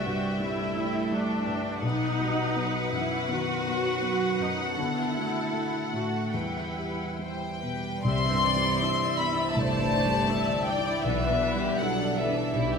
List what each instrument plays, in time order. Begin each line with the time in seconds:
Already playing: felt piano C2 G3 E4, harp C3 E4 G4 D5, viola section F#4, violin section D5 E5 G5
0.05 felt piano G2, cello section G3, harp G3
0.40 felt piano G3, cello section A3, harp C4, viola section E4
0.76 harp G3, felt piano E4
1.12 felt piano G3, viola section D4, harp D5
1.46 felt piano G2, harp G3
1.82 felt piano B1, harp B2, cello section B3, viola section D#4, violin section B4 F#5
2.19 cello section G3, harp B3, felt piano F#4
2.56 cello section F#3, felt piano B3, harp B4
2.92 felt piano F#2, cello section E3, harp B3, viola section E4
3.28 cello section D#3, harp D#3, felt piano B3, viola section F#4
3.66 cello section F#3, harp B3, felt piano F#4
4.02 felt piano B3, harp B4
4.39 felt piano F#2, harp B3, viola section D#4
4.61 viola section F#4
4.77 felt piano D3, harp D3, cello section B3, viola section E4, violin section A4
5.15 cello section A3, harp A3, felt piano F#4
5.53 felt piano A3, cello section A3, harp E5
5.93 felt piano A2, harp A3, viola section F#4
6.33 felt piano E2, harp E3, cello section G3, viola section E4, violin section B4 G5
6.76 felt piano G4
7.18 cello section G3, felt piano G3, violin section C5 G5, harp E5
7.63 felt piano B2, violin section B4
8.04 felt piano C2, double bass section C2, harp C3, violin section G3 D5 C6, cello section C4, viola section E5
8.25 violin section C4, harp D4
8.31 felt piano G2
8.45 harp E3, violin section D4, viola section D5
8.56 felt piano G3
8.63 harp E4, violin section E4
8.82 violin section D4, felt piano E4, harp D5, viola section E5
9.03 violin section C4, felt piano D5
9.19 violin section G3 B5, cello section B3, harp E5
9.32 felt piano E4
9.38 violin section C4, harp D6
9.54 double bass section G1, felt piano C2, cello section A3, violin section D4 A5, viola section C5, harp E5
9.75 violin section E4, harp D6
9.80 felt piano G2
9.93 violin section D4, harp E5
10.05 felt piano G3
10.13 violin section C4
10.29 violin section G3, felt piano E4, harp E4, viola section E5
10.49 harp D3, violin section C4
10.53 felt piano D5
10.65 cello section G3, harp C4, violin section D4 G5, viola section D5
10.78 felt piano E4
10.88 violin section E4
11.03 felt piano B1, double bass section B1, harp B2, cello section E3, violin section B3 E5, viola section B4
11.24 harp B3, violin section D4
11.29 felt piano B2
11.44 violin section E4
11.55 felt piano G3
11.62 harp D4, violin section G4
11.78 cello section F#3, felt piano D4, viola section A4, harp D5, violin section F#5
11.83 violin section E4
12.00 violin section D4
12.04 felt piano D5
12.15 cello section E3, violin section B3 E5, harp D5
12.29 felt piano D4
12.36 violin section D4, harp D6
12.54 felt piano B1, double bass section B1, violin section E4, viola section G4, harp D5
12.72 violin section G4, harp D6